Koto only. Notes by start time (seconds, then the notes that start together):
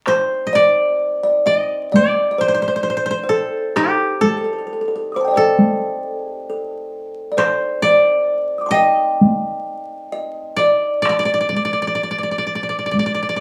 0.08 C5
0.47 D#5
0.55 D5
1.47 D5
1.58 D#5
1.96 D5
2.41 C5
2.48 C5
2.54 C5
2.62 C5
2.68 C5
2.76 C5
2.83 C5
2.90 C5
2.97 C5
3.06 C5
3.11 C5
3.29 A4
3.76 G4
4.21 A4
5.37 A4
6.16 G#4
6.35 G4
7.38 C5
7.82 D5
8.71 D#5
10.57 D5
11.02 D5
11.09 D5
11.19 D5
11.25 D5
11.34 D5
11.41 D5
11.49 D5
11.56 D5
11.65 D5
11.73 D5
11.82 D5
11.87 D5
11.95 D5
12.03 D5
12.11 D5
12.18 D5
12.23 D5
12.31 D5
12.38 D5
12.47 D5
12.55 D5
12.63 D5
12.69 D5
12.79 D5
12.86 D5
12.91 D5
12.99 D5
13.06 D5
13.14 D5
13.22 D5
13.29 D5
13.36 D5